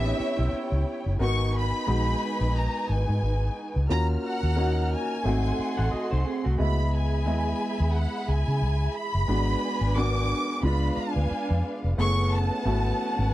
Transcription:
Already playing: fingered electric bass A1, grand piano B3 C#4 E4 G4, string section E4 C#5 G5, violin section E5
0.04 clean electric guitar D#4 B4
0.19 clean electric guitar E4 C#5, muted fingered electric bass stroke
0.39 fingered electric bass B1, clean electric guitar G4 E5
0.72 fingered electric bass C#2
1.06 fingered electric bass F#1
1.19 fingered electric bass G#1, grand piano B3 D#4 F#4 A#4, string section D#4 B4 G#5, violin section C#6
1.56 violin section B5
1.87 fingered electric bass A#1, grand piano G#3 B3 D#4 F#4
2.41 fingered electric bass A#1
2.56 violin section A#5
2.89 fingered electric bass G#1, violin section G#5
3.09 fingered electric bass G#2
3.22 fingered electric bass G#1
3.76 fingered electric bass C#2
3.89 fingered electric bass D#2, grand piano A#3 C#4 F4 F#4, string section F#4 A#5 F6, violin section A#5
4.25 violin section F#5
4.43 fingered electric bass D#2
4.56 grand piano A#3 C#4 D#4 F#4
4.92 violin section G#5
5.24 fingered electric bass G#1, grand piano A3 C4 D#4 F#4, string section A4 F#5 C6
5.59 muted fingered electric bass stroke
5.77 fingered electric bass A1, clean electric guitar A4 F#5
5.92 clean electric guitar F#4 D#5, muted fingered electric bass stroke
6.11 fingered electric bass C2, clean electric guitar D#4 C5
6.26 clean electric guitar C4 G#4
6.44 fingered electric bass C2, clean electric guitar A3 F#4
6.58 fingered electric bass C#2, grand piano G#3 B3 E4 D#5, string section G#4 E5 B5, violin section B5
6.95 violin section G#5
7.26 fingered electric bass D#2, grand piano G#3 B3 E4 D#5
7.80 fingered electric bass D#2
7.95 violin section F#5
8.28 fingered electric bass C#2, violin section G#5
8.48 fingered electric bass C#3
8.62 fingered electric bass C#2
8.95 violin section B5
9.15 fingered electric bass F#1
9.28 fingered electric bass G#1, grand piano G#3 B3 D4 F#4, string section D4 B4 G#5
9.81 fingered electric bass G#1
9.95 grand piano B3 D4 F#4 A#4, violin section D6
10.62 fingered electric bass C#2, grand piano G#3 B3 D4 F4, string section D4 B4 F5, violin section B5
10.97 violin section G#5, muted fingered electric bass stroke
11.16 fingered electric bass D2
11.31 muted fingered electric bass stroke
11.50 fingered electric bass F2
11.84 fingered electric bass F1
11.97 fingered electric bass F#1, grand piano A3 B3 E4 G#4, string section C#4 B4 F#5, violin section C#6
12.32 violin section A5
12.65 fingered electric bass G#1, grand piano A3 B3 E4 F#4
13.19 fingered electric bass G#1

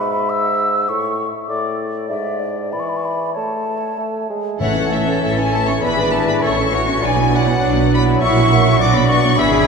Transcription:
Already playing: bassoon G#2, clarinet E5, flute B5
0.30 flute E6
0.89 bassoon A2, flute C#6
1.47 bassoon A2, clarinet D5, flute D6
2.08 bassoon G#2, clarinet D5, flute E5
2.40 flute D5
2.72 bassoon E3, clarinet D5, flute B5
2.80 flute C#6
2.89 flute B5
2.97 flute C#6
3.05 flute B5
3.34 bassoon A3, clarinet C#5, flute A5
3.98 bassoon A3
4.30 bassoon G#3
4.58 double bass section A1, timpani A2, french horn section E3 C#4, bassoon E3, viola section A3 E4, cello section A4, clarinet C#5, violin section C#5 E5 F#5, flute F#5
4.75 viola section C#4, violin section A4 C#5
4.91 viola section A3 E4, violin section C#5 E5, flute E5
5.06 viola section C#4, violin section A4 C#5
5.22 double bass section A1, viola section A3 E4, violin section C#5 E5
5.37 viola section C#4, violin section A4 C#5 G#5, flute G#5
5.52 viola section A3 E4, violin section C#5 E5 A5, flute A5
5.67 viola section C#4, violin section A4 C#5 C#6, flute C#6
5.82 double bass section G#1, viola section B3 E4, french horn section D4, violin section G#4 E5 B5, cello section B4, clarinet D5, flute B5
5.98 viola section D4 G#4, violin section B4 D5
6.12 viola section B3 E4, violin section G#4 E5 A5, flute A5
6.28 viola section D4 G#4, violin section B4 D5 B5, flute B5
6.42 double bass section A1, viola section A3 E4, french horn section C#4, cello section A4, clarinet C#5, violin section C#5 C#6, flute C#6
6.58 viola section C#4, violin section A4 E5
6.72 viola section A3 E4, cello section F#4, violin section C#5
6.88 viola section C#4, violin section A4 E5
7.01 double bass section B1, viola section F#3 D4, bassoon F#3, french horn section F#3, cello section E4, violin section B4 D5 G#5, clarinet D5, flute G#5
7.06 french horn section D4
7.16 viola section B3, violin section F#4 B4
7.30 viola section F#3 D4, violin section B4 D5, flute F#5
7.35 violin section F#5
7.46 viola section B3, violin section F#4 B4
7.61 double bass section B1, viola section F#3 D4, cello section D4, violin section B4 D5
7.76 viola section B3, violin section F#4 B4
7.91 viola section F#3 D4, cello section E4, violin section B4 D5 B5, flute B5
8.06 viola section B3, violin section F#4 B4
8.21 double bass section A#1, viola section A#3 E4, french horn section E4, violin section A#4 F#5 C#6, clarinet E5, flute C#6
8.37 viola section C#4 F#4, violin section F#4 E5
8.52 viola section A#3 E4, violin section A#4 F#5
8.66 viola section C#4 F#4, violin section F#4 E5
8.79 double bass section B1, viola section F#3 D4, french horn section D4, cello section F#4, violin section B4 F#5 D6, clarinet D5, flute D6
8.94 viola section B3, violin section F#4 D5 B5, flute B5
9.07 viola section D4, violin section B4 F#5 C#6, flute C#6
9.11 viola section F#3
9.23 viola section B3, violin section F#4 D5
9.37 double bass section G#1, bassoon E3, french horn section E3, viola section B3 E4, violin section G#4 E5 B5, cello section G#4, clarinet E5, flute B5
9.52 viola section D4 G#4, violin section B4 D5

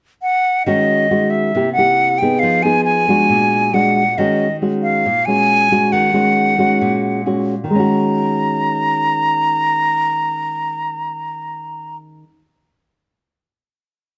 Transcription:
0.22 flute F#5
0.66 nylon-string guitar D#3 G#3 C#4 F#4, flute D#5
1.11 nylon-string guitar G#3 C#4 F#4
1.30 flute E5
1.55 nylon-string guitar C3 A#3 E4 G4
1.73 flute F#5
1.78 nylon-string guitar A#3 E4 G4
2.18 nylon-string guitar B3 D#4, flute G5
2.22 nylon-string guitar G#4
2.39 nylon-string guitar F3, flute F5
2.63 nylon-string guitar B3 D#4 G#4, flute G#5
2.84 flute G#5
3.08 nylon-string guitar G#3 D4 F#4
3.29 nylon-string guitar A#2
3.74 nylon-string guitar G#3 D4 F#4, flute F#5
4.18 nylon-string guitar D#3 G#3 C#4 F#4, flute D#5
4.62 nylon-string guitar G#3 C#4 F#4
4.83 flute F5
5.06 nylon-string guitar A#2
5.25 nylon-string guitar G#3 C#4 F#4, flute G#5
5.71 nylon-string guitar G#3 C#4 F#4
5.92 nylon-string guitar D#3, flute F#5
6.14 nylon-string guitar G#3 C#4 F#4
6.58 nylon-string guitar G#3 C#4 F#4
6.81 nylon-string guitar A#2
7.26 nylon-string guitar G#3 C#4 F#4
7.64 nylon-string guitar D#3
7.70 nylon-string guitar G#3, flute A#5
7.75 nylon-string guitar C#4
7.79 nylon-string guitar F#4

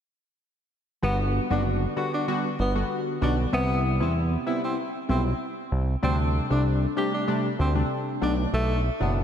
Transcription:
1.02 analog synth bass G1, synth keys D3 G3 B3 F#4, tenor saxophone B3
1.50 analog synth bass F#1, synth keys D3 G3 B3 F#4, tenor saxophone D4
1.96 synth keys D3 G3 B3 F#4, tenor saxophone F#4
2.14 tenor saxophone D4
2.28 synth keys D3 G3 B3 F#4
2.59 analog synth bass G1, tenor saxophone B3
2.75 synth keys D3 G3 B3 F#4
3.21 analog synth bass B1, synth keys D3 G3 B3 F#4, tenor saxophone D4
3.52 analog synth bass C2, synth keys C3 G3 B3 E4, tenor saxophone B3
4.00 analog synth bass E2, synth keys C3 G3 B3 E4, tenor saxophone C4
4.46 synth keys C3 G3 B3 E4, tenor saxophone E4
4.64 tenor saxophone C4
5.09 analog synth bass B1, synth keys C3 G3 B3 E4, tenor saxophone C4
5.72 analog synth bass C2
6.02 analog synth bass D2, synth keys C3 G3 A3 D4, tenor saxophone C4
6.50 analog synth bass C2, synth keys C3 G3 A3 D4, tenor saxophone D4
6.96 synth keys C3 G3 A3 D4, tenor saxophone G4
7.14 tenor saxophone D4
7.27 synth keys C3 G3 A3 D4
7.59 analog synth bass D2, tenor saxophone C4
7.75 synth keys C3 G3 A3 D4
8.21 analog synth bass B1, synth keys B2 F#3 A3 D4, tenor saxophone D4
8.53 analog synth bass B1, tenor saxophone A3
9.00 analog synth bass F#1, synth keys B2 F#3 A3 D4, tenor saxophone B3

